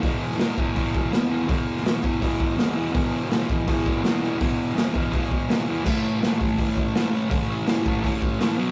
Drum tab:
CC |----------------|----------------|----------------|----------------|
HH |o---o---o---o---|o---o---o---o---|o---o---o---o---|o---o---o---o---|
SD |---oo-------o---|---oo-------o---|----o-------o-o-|----o-------o---|
BD |o-----o-o-o-----|o-----o-o-o-----|o-----o-o-o-----|o-----o-o-o-----|

CC |x---------------|----------------|
HH |----o---o---o---|o---o---o---o---|
SD |----o-------o-o-|----o-------o---|
BD |o-----o-o-o-----|o-----o-o-o-----|